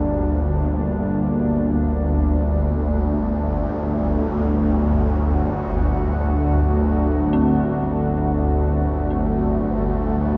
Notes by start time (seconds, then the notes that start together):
Already playing: G1 D2 G3 A#3 D4
1.53 A3
2.85 F#4
7.33 C4